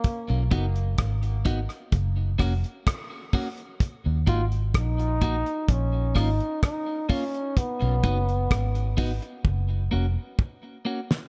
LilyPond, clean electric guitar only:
\new Staff \with { instrumentName = "Clean electric guitar" } { \time 4/4 \key ces \lydian \tempo 4 = 64 r8 <b dis' fis'>8 r8 <b dis' fis'>8 r8 <bes des' ges'>8 r8 <bes des' ges'>8 | r8 <bes ees' ges'>8 r8 <bes ees' ges'>8 r8 <bes des' f'>8 r8 <bes des' f'>8 | r8 <b dis' fis'>8 r8 <b dis' fis'>8 r8 <bes des' ges'>8 r8 <bes des' ges'>8 | }